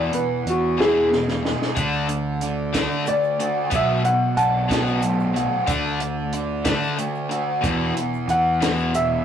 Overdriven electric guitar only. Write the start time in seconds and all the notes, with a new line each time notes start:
Already playing: E2 B2 E3
0.12 E2 B2
0.77 E2 B2 E3
1.10 E2 B2
1.43 E2 B2
1.75 D3 A3 D4
2.08 D3 A3
2.73 D3 A3 D4
3.06 D3 A3
3.40 D3 A3
3.70 B2 F#3 B3
4.04 B2 F#3
4.68 B2 F#3 B3
5.02 B2 F#3
5.34 B2 F#3
5.67 D3 A3 D4
6.00 D3 A3
6.65 D3 A3 D4
6.97 D3 A3
7.29 D3 A3
7.61 E2 B2 E3
7.95 E2 B2
8.60 E2 B2 E3
8.93 E2 B2